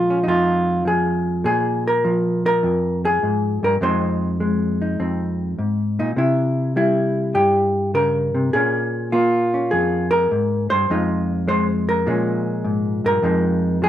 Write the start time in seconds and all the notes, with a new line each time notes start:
Already playing: A#2 F3 G#3 F4
0.10 C#4
0.24 F2 D#4
0.28 F4
0.85 F3 G#4
1.44 A#2 G#4
1.88 A#4
2.05 F3
2.46 A#4
2.63 F2
3.05 G#4
3.23 G#2
3.63 G2 A#4
3.81 F2 G#3 C4 D#4 C5
4.40 G#3
4.82 D#4
5.00 F2 C4
5.59 G#2
5.99 A#2 D#4
6.16 C3 E4
6.76 G3 E4
7.34 G2 G4
7.94 C#3 A#4
8.35 C3
8.53 A#2 A#3 C#4 G#4
9.12 A#3 F4
9.54 C#4
9.71 F2 G#4
10.11 A#4
10.31 G#2
10.70 G2 C5
10.90 F2 G#3 D#4 F4
11.48 G#3 C5
11.89 A#4
12.06 A#2 F3 G#3 C#4
12.64 G#2
13.05 G2 A#4
13.22 F2 F3 G#3 D#4
13.82 F3 G#4